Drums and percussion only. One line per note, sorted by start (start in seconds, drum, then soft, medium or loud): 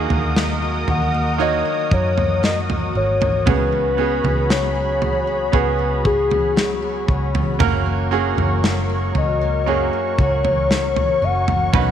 0.10 floor tom medium
0.36 snare loud
0.88 floor tom medium
1.91 kick medium
2.18 floor tom medium
2.44 snare loud
2.70 floor tom medium
3.22 floor tom medium
3.47 kick loud
3.47 floor tom loud
4.25 floor tom medium
4.50 snare loud
5.02 floor tom medium
5.53 kick medium
6.05 kick medium
6.31 floor tom medium
6.57 snare loud
7.08 kick medium
7.35 floor tom medium
7.60 kick loud
7.60 floor tom loud
8.38 floor tom medium
8.64 snare loud
9.15 floor tom medium
10.19 kick medium
10.45 floor tom medium
10.71 snare medium
10.96 floor tom medium
11.48 floor tom medium
11.74 kick loud
11.74 floor tom loud